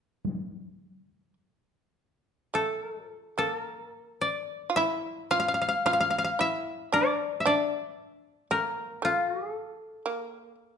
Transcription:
Already playing: D4 D5
0.25 taiko high
2.54 A3 A4
3.09 F3
3.38 A#3 A4
3.57 A#4
4.21 D5
4.70 F4
4.76 E4 E5
5.31 F4 F5
5.40 F5
5.48 F5
5.54 F5
5.62 F5
5.69 F5
5.86 F4 F5
5.93 F5
6.00 F5
6.10 F5
6.18 F5
6.24 F5
6.39 E4 E5
6.92 D4 D5
7.40 E5
7.46 D4 D5
8.51 A3 A#4
8.63 A#3
9.02 A3 F4
9.54 A4
10.06 A#3

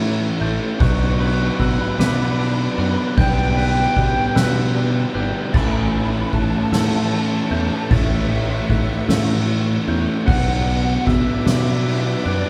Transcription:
Already playing: A2 E3 A3 C#4 E4 F#4 A4 C#5 C#6 E6
0.01 E4, ride
0.40 A1 A2 E3 A3 C#4 E4 A4 G6, ride
0.79 B1 B2 F#3 B3 D4 B4 D5 F#5 C#6 F#6, kick, ride
0.83 D4
0.88 C#6
0.96 C#6
1.03 C#6
1.11 C#6
1.18 B4 C#6, ride
1.26 C#6
1.34 C#6
1.41 C#6
1.48 C#6
1.55 C#6
1.59 B2 F#4 B5 E6, kick, ride
1.67 B5
1.74 B5
1.81 B5
1.89 B5
1.97 B2 F#3 B3 D4 B4 B5 D6, snare, ride
2.07 B5
2.15 B5
2.22 B5
2.31 B5
2.38 D4 B5, ride
2.46 B5
2.53 B5
2.61 B5
2.68 B5
2.76 F#2 F#3 B3 D4 F#4 B5 F#6, ride
2.81 B2 B5
2.91 B5
2.98 B5
3.06 B5
3.14 B1 B2 G3 B3 G5 B5 G6, kick, ride
3.18 G3 B3 D4 G5
3.26 G5
3.33 G5
3.40 G5
3.48 G5
3.56 B4 G5, ride
3.65 G5
3.72 G5
3.79 G5
3.87 G5
3.95 B2 G4 G5 F#6, kick, ride
4.02 G5
4.09 G5
4.18 G5
4.25 G5
4.35 B2 G3 B3 D4 B4 E6, snare, ride
4.75 D4, ride
5.14 G#1 B2 G3 B3 D4 G4 F#6, ride
5.53 A1 A2 E3 A3 C#4 E4 A4 C#5 E5 B5 C#6 A6, kick, crash
5.57 E4
5.64 B5
5.72 B5
5.79 B5
5.88 B5
5.94 B5, ride
6.05 B5
6.12 B5
6.21 B5
6.27 B5
6.33 A2 A5 F#6, kick, ride
6.41 A5
6.49 A5
6.56 A5
6.63 A5
6.71 A2 E3 A3 C#4 E4 A5 E6, snare, ride
6.80 A5
6.88 A5
6.95 A5
7.04 A5
7.12 A5, ride
7.18 A5
7.27 A5
7.34 A5
7.42 A5
7.49 E2 A3 C#4 E4 A5 G6, ride
7.54 A2 E3 A5
7.65 A5
7.72 A5
7.80 A5
7.90 A1 A2 E3 A3 C#4 E4 F#4 E5 A6, kick, ride
7.94 E4
7.99 E5
8.06 E5
8.13 E5
8.21 E5
8.29 E5, ride
8.37 E5
8.44 E5
8.51 E5
8.60 E5
8.68 A2 E5 F#6, kick, ride
8.75 E5
8.83 E5
8.90 E5
8.97 E5
9.08 A2 E3 A3 C#4 E4 E6, snare, ride
9.49 ride
9.87 E2 A2 E3 A3 C#4 E4 G6, ride
10.26 B1 B2 F#3 B3 D4 B4 D5 F#5 D6 F#6, kick, ride
10.30 D4 F#5
10.41 F#5
10.50 F#5
10.56 F#5
10.64 F#5, ride
10.72 F#5
10.79 F#5
10.85 F#5
10.94 F#5
11.02 F#5
11.06 B2 E5 E6, kick, ride
11.13 E5
11.22 E5
11.28 E5
11.37 E5
11.45 B2 F#3 B3 D4 E5 D6, snare, ride
11.51 E5
11.60 E5
11.67 E5
11.75 E5
11.82 E5
11.86 ride
11.91 E5
11.98 E5
12.05 E5
12.14 E5
12.21 E5
12.25 F#2 B2 F#3 B3 D4 D5 F#6, ride
12.32 D5
12.42 D5

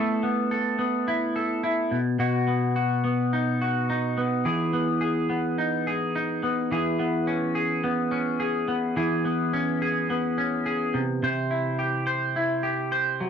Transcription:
Already playing: A3 B3 E4 A4
0.23 B3
0.51 A4
0.79 B3
1.08 E4
1.36 A4
1.64 E4
1.91 B2
2.19 B2 F#4
2.48 B3
2.76 F#4
3.04 B3
3.33 D#4
3.61 F#4
3.90 D#4
4.18 B3
4.45 E3 G#4
4.73 B3
5.01 G#4
5.29 B3
5.58 D#4
5.87 G#4
6.15 D#4
6.43 B3
6.71 E3 G#4
6.99 B3
7.27 C#4
7.55 G#4
7.84 B3
8.11 C#4
8.40 G#4
8.68 B3
8.96 E3 G#4
9.25 B3
9.53 C#4
9.82 G#4
10.10 B3
10.38 C#4
10.66 G#4
10.94 C3
11.23 C3 C5
11.51 E4
11.79 G4
12.07 C5
12.36 E4
12.63 G4
12.92 C5
13.21 F#3

